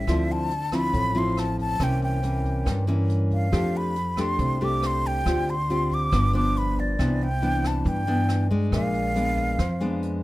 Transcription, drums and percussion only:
0.07 kick, cross-stick, closed hi-hat
0.29 closed hi-hat
0.50 closed hi-hat
0.72 kick, cross-stick, closed hi-hat
0.94 kick, closed hi-hat
1.16 closed hi-hat
1.37 cross-stick, closed hi-hat
1.58 kick, closed hi-hat
1.80 kick, cross-stick, closed hi-hat
2.02 closed hi-hat
2.23 closed hi-hat
2.45 kick, closed hi-hat
2.66 kick, cross-stick, closed hi-hat
2.88 closed hi-hat
3.09 closed hi-hat
3.31 kick, closed hi-hat
3.53 kick, cross-stick, closed hi-hat
3.75 closed hi-hat
3.96 closed hi-hat
4.17 kick, cross-stick, closed hi-hat
4.39 kick, closed hi-hat
4.61 closed hi-hat
4.82 cross-stick, closed hi-hat
5.04 kick, closed hi-hat
5.26 kick, cross-stick, closed hi-hat
5.48 closed hi-hat
5.69 closed hi-hat
5.91 kick, closed hi-hat
6.12 kick, cross-stick, closed hi-hat
6.34 closed hi-hat
6.56 closed hi-hat
6.77 kick, closed hi-hat
6.99 kick, cross-stick, closed hi-hat
7.21 closed hi-hat
7.42 closed hi-hat
7.64 kick, cross-stick, closed hi-hat
7.85 kick, closed hi-hat
8.07 closed hi-hat
8.29 cross-stick, closed hi-hat
8.51 kick, closed hi-hat
8.72 kick, cross-stick, closed hi-hat
8.94 closed hi-hat
9.16 closed hi-hat
9.37 kick, closed hi-hat
9.59 kick, cross-stick, closed hi-hat
9.81 closed hi-hat
10.03 closed hi-hat

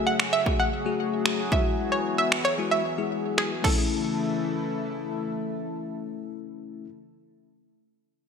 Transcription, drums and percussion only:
0.20 finger snap
0.46 kick
1.26 finger snap
1.52 kick
2.32 finger snap
3.38 finger snap
3.64 kick, crash

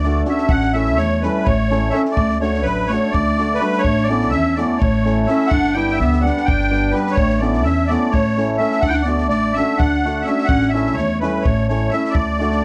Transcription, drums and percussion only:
0.03 snare
0.25 snare
0.38 snare
0.49 kick
0.62 snare
0.75 snare
0.86 snare
0.98 snare
1.23 snare
1.47 kick
1.72 snare
1.94 snare
2.05 snare
2.17 kick
2.30 snare
2.43 snare
2.54 snare
2.66 snare
2.90 snare
3.14 kick
3.38 snare
3.61 snare
3.73 snare
3.84 kick
3.97 snare
4.10 snare
4.21 snare
4.32 snare
4.58 snare
4.82 kick
5.06 snare
5.29 snare
5.51 kick
5.64 snare
5.77 snare
5.89 snare
6.01 snare
6.13 snare
6.26 snare
6.37 snare
6.48 kick
6.60 snare
6.73 snare
6.95 snare
7.07 snare
7.17 kick
7.30 snare
7.42 snare
7.53 snare
7.65 snare
7.90 snare
8.14 kick
8.38 snare
8.61 snare
8.72 snare
8.83 kick
8.95 snare
9.07 snare
9.18 snare
9.31 snare
9.57 snare
9.80 kick
10.05 snare
10.27 snare
10.38 snare
10.49 kick
10.62 snare
10.76 snare
10.86 snare
10.97 snare
11.23 snare
11.45 kick
11.70 snare
11.93 snare
12.05 snare
12.15 kick
12.41 snare
12.52 snare

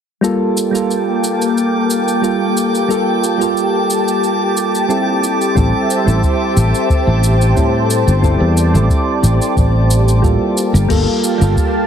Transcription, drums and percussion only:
0.24 cabasa
0.57 cabasa
0.75 cabasa
0.91 cabasa
1.24 cabasa
1.42 cabasa
1.58 cabasa
1.90 cabasa
2.08 cabasa
2.24 cabasa
2.57 cabasa
2.75 cabasa
2.90 cabasa
3.24 cabasa
3.41 cabasa
3.57 cabasa
3.90 cabasa
4.08 cabasa
4.24 cabasa
4.57 cabasa
4.75 cabasa
4.90 cabasa
5.24 cabasa
5.41 cabasa
5.56 kick, cabasa
5.90 cabasa
6.08 cabasa
6.23 kick, cabasa
6.57 cabasa
6.75 cabasa
6.90 kick, cabasa
7.24 cabasa
7.41 cabasa
7.56 kick, cabasa
7.90 cabasa
8.08 cabasa
8.23 kick, cabasa
8.57 cabasa
8.75 cabasa
8.90 kick, cabasa
9.24 cabasa
9.42 cabasa
9.56 kick, cabasa
9.91 cabasa
10.08 cabasa
10.23 kick, cabasa
10.57 cabasa
10.75 cabasa
10.90 kick, crash, cabasa
11.24 cabasa
11.42 cabasa
11.57 kick, cabasa

